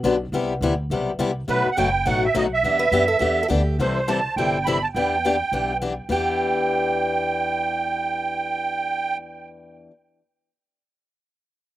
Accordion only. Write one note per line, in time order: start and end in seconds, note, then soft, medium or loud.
1.49 1.70 B4 loud
1.71 1.77 F#5 medium
1.77 2.07 G5 loud
2.07 2.24 F#5 loud
2.25 2.36 E5 medium
2.37 2.44 D#5 medium
2.54 3.47 E5 medium
3.80 4.09 C5 medium
4.08 4.35 A5 medium
4.37 4.66 G5 medium
4.65 4.83 B5 medium
4.82 4.88 A5 medium
4.95 5.77 G5 medium
6.11 9.17 G5 medium